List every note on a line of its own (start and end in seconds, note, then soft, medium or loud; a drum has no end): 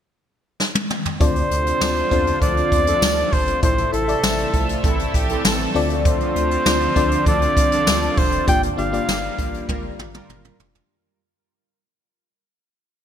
0.60 snare medium
0.75 high tom medium
0.90 mid tom medium
1.05 floor tom loud
1.20 1.42 D2 loud
1.20 5.71 C3 medium
1.20 3.60 D3 medium
1.20 2.07 D3 medium
1.20 8.44 A3 medium
1.20 1.74 C4 medium
1.20 1.75 D4 medium
1.20 3.60 D4 medium
1.20 3.61 F4 medium
1.20 1.75 F4 medium
1.20 1.75 A4 medium
1.20 2.38 C5 loud
1.20 1.75 D5 medium
1.20 kick loud
1.20 closed hi-hat medium
1.36 closed hi-hat medium
1.51 1.72 D2 loud
1.51 closed hi-hat medium
1.66 closed hi-hat medium
1.81 2.03 D2 loud
1.81 2.08 C4 medium
1.81 2.08 D4 medium
1.81 2.08 F4 medium
1.81 2.08 A4 medium
1.81 2.09 D5 medium
1.81 snare loud
1.81 tambourine medium
1.96 closed hi-hat soft
2.11 2.33 E2 loud
2.11 3.20 C4 medium
2.11 3.20 D4 medium
2.11 3.20 F4 medium
2.11 3.20 A4 medium
2.11 3.20 C5 loud
2.11 kick medium
2.11 closed hi-hat medium
2.27 closed hi-hat medium
2.42 2.63 D2 loud
2.42 2.55 F3 medium
2.42 2.55 D4 medium
2.42 2.55 A4 medium
2.42 3.34 D5 loud
2.42 kick loud
2.42 closed hi-hat medium
2.57 closed hi-hat medium
2.72 2.94 E2 loud
2.72 kick medium
2.72 closed hi-hat medium
2.87 3.30 F3 loud
2.87 3.30 D4 loud
2.87 3.30 A4 loud
2.87 closed hi-hat medium
3.02 3.24 D2 loud
3.02 snare loud
3.02 tambourine medium
3.17 closed hi-hat medium
3.33 3.54 G1 loud
3.33 3.63 C5 medium
3.33 kick loud
3.33 open hi-hat medium
3.48 closed hi-hat medium
3.62 3.85 A1 loud
3.62 4.50 A2 medium
3.62 3.90 E4 medium
3.62 5.73 A4 medium
3.62 3.90 A4 medium
3.62 3.91 C5 loud
3.62 3.90 C5 medium
3.62 5.73 E5 medium
3.62 kick loud
3.62 closed hi-hat medium
3.78 closed hi-hat medium
3.93 4.15 A1 loud
3.93 4.06 E4 medium
3.93 4.07 A4 medium
3.93 4.80 A4 medium
3.93 4.07 C5 medium
3.93 closed hi-hat medium
4.08 5.17 A4 medium
4.08 5.17 D5 medium
4.08 5.17 E5 medium
4.08 closed hi-hat medium
4.23 4.45 A1 loud
4.23 snare loud
4.23 tambourine medium
4.38 closed hi-hat soft
4.54 4.75 A#1 medium
4.54 4.82 F4 medium
4.54 kick medium
4.54 closed hi-hat medium
4.69 closed hi-hat medium
4.84 5.06 A1 loud
4.84 4.97 E3 medium
4.84 4.97 C4 medium
4.84 5.14 E4 medium
4.84 4.97 A4 loud
4.84 kick loud
4.84 closed hi-hat medium
4.99 closed hi-hat medium
5.14 5.36 A#1 medium
5.14 5.45 G4 loud
5.14 kick medium
5.14 closed hi-hat medium
5.29 5.73 E3 loud
5.29 5.73 C4 medium
5.29 5.73 A4 loud
5.29 closed hi-hat medium
5.45 5.66 A1 loud
5.45 5.90 A4 loud
5.45 snare loud
5.45 tambourine medium
5.60 closed hi-hat medium
5.75 6.19 D2 loud
5.75 10.86 D3 medium
5.75 6.62 D3 medium
5.75 10.86 F3 medium
5.75 6.56 C4 medium
5.75 8.45 C4 medium
5.75 6.56 D4 medium
5.75 10.86 F4 medium
5.75 6.57 F4 medium
5.75 6.57 A4 medium
5.75 6.57 D5 loud
5.75 open hi-hat medium
5.90 closed hi-hat medium
6.05 7.23 C5 loud
6.05 kick loud
6.05 closed hi-hat medium
6.20 closed hi-hat soft
6.36 6.57 D2 loud
6.36 closed hi-hat medium
6.51 closed hi-hat medium
6.66 6.88 D2 loud
6.66 6.93 C4 medium
6.66 6.93 D4 medium
6.66 6.93 F4 medium
6.66 6.93 A4 medium
6.66 6.93 D5 medium
6.66 snare loud
6.66 tambourine medium
6.81 closed hi-hat soft
6.96 7.18 D2 medium
6.96 8.04 C4 medium
6.96 8.05 D4 medium
6.96 8.05 F4 medium
6.96 8.05 A4 medium
6.96 8.05 D5 loud
6.96 kick medium
6.96 closed hi-hat medium
7.12 closed hi-hat medium
7.26 7.48 D2 loud
7.26 7.39 F3 medium
7.26 7.39 D4 medium
7.26 7.39 A4 medium
7.26 8.20 D5 loud
7.26 kick loud
7.26 closed hi-hat medium
7.42 closed hi-hat medium
7.57 7.79 C2 loud
7.57 kick medium
7.57 closed hi-hat medium
7.72 8.15 F3 medium
7.72 8.15 D4 loud
7.72 8.15 A4 loud
7.72 closed hi-hat medium
7.87 8.09 D2 loud
7.87 snare loud
7.87 tambourine medium
8.02 closed hi-hat medium
8.17 8.39 F1 medium
8.17 8.48 C5 medium
8.17 kick loud
8.17 open hi-hat medium
8.32 closed hi-hat medium
8.47 8.70 G1 loud
8.47 9.35 G2 medium
8.47 10.88 G3 medium
8.47 8.74 A#3 medium
8.47 10.88 A#3 medium
8.47 8.75 D4 medium
8.47 8.75 F4 medium
8.47 8.75 G4 medium
8.47 8.75 D5 medium
8.47 8.62 G5 loud
8.47 kick loud
8.47 closed hi-hat loud
8.63 closed hi-hat medium
8.77 9.00 G1 loud
8.77 8.91 A#3 medium
8.77 8.91 D4 medium
8.77 8.92 F4 medium
8.77 8.92 G4 medium
8.77 8.92 D5 medium
8.77 9.65 F5 loud
8.77 closed hi-hat medium
8.92 10.01 A#3 medium
8.92 10.02 D4 medium
8.92 10.02 F4 medium
8.92 10.02 G4 medium
8.92 10.02 D5 medium
8.92 closed hi-hat medium
9.08 9.30 G1 loud
9.08 snare loud
9.08 tambourine medium
9.24 closed hi-hat soft
9.39 9.60 A1 medium
9.39 kick medium
9.39 closed hi-hat medium
9.54 closed hi-hat medium
9.69 9.91 G1 loud
9.69 9.82 G3 medium
9.69 9.82 F4 medium
9.69 9.82 A#4 loud
9.69 kick loud
9.69 high tom medium
9.99 10.21 A1 medium
9.99 mid tom medium
10.14 10.58 G3 loud
10.14 10.58 F4 loud
10.14 10.58 A#4 loud
10.14 mid tom medium
10.29 10.51 G1 loud
10.29 mid tom medium
10.45 mid tom medium
10.60 10.81 F1 medium
10.60 floor tom loud
10.75 floor tom medium